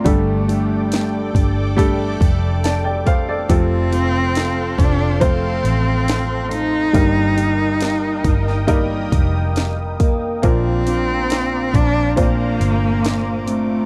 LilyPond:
<<
  \new Staff \with { instrumentName = "Analog synth pad" } { \time 4/4 \key bes \major \tempo 4 = 69 <a' d'' g'' d'''>1 | <a' c'' f'' c'''>1 | <bes' ees'' g'' ees'''>1 | <c'' f'' bes'' d'''>1 | }
  \new Staff \with { instrumentName = "Grand piano" } { \time 4/4 \key bes \major << { r2. <d'' a''>16 <d'' g''>16 <c'' f''>16 <a' d''>16~ | <a' d''>16 r2. r8. | r1 | r1 | } \\ { <g a d' g' a'>2 <g a d' g' a'>2 | <f a c' f' a'>2 <f a c' f' c''>2 | <g bes ees' g' bes'>2 <g bes ees' g' bes'>2 | <bes c' d' f' bes'>2 <bes, c' d' f' c''>2 | } >> }
  \new Staff \with { instrumentName = "Grand piano" } { \clef bass \time 4/4 \key bes \major <g, d>4. r2 r8 | c4. r2 r8 | g,4. r2 r8 | <bes, f>4. r2 r8 | }
  \new Staff \with { instrumentName = "Cello" } { \time 4/4 \key bes \major a2~ a8 r4. | c'4. d'8 c'4. ees'8~ | ees'2~ ees'8 r4. | c'4. d'8 bes4. a8 | }
  \new Staff \with { instrumentName = "Steel-string acoustic guitar" } { \time 4/4 \key bes \major g8 <a d' g'>4 d'2 a8 | f,8 <a c' f'>4 c'2 a8 | g8 <bes ees' g'>4 ees'2 bes8 | r8 <c' d' f'>4 d'2 c'8 | }
  \new Staff \with { instrumentName = "Fingered electric bass" } { \clef bass \time 4/4 \key bes \major g,,4. g,,4 f,,4. | f,,4. f,,4 a,,4. | g,,4. g,,4 f,,4. | bes,,4. bes,,4 g,,4. | }
  \new DrumStaff \with { instrumentName = "Drums" } \drummode { \time 4/4 <hho bd>8 hho8 <hho sn>8 <hho bd>8 <hho bd>8 <hho bd>8 <hho sn>8 <hho bd>8 | <hho bd>8 hho8 <hho sn>8 <hho bd>8 <hho bd>8 hho8 <hho sn>8 hho8 | <hho bd>8 hho8 <hho sn>8 <hho bd>16 sn16 <hho bd>8 <hho bd>8 <hho sn>8 <hho bd>8 | <hho bd>8 hho8 <hho sn>8 <hho bd>8 <hho bd>8 hho8 <hho sn>8 hho8 | }
>>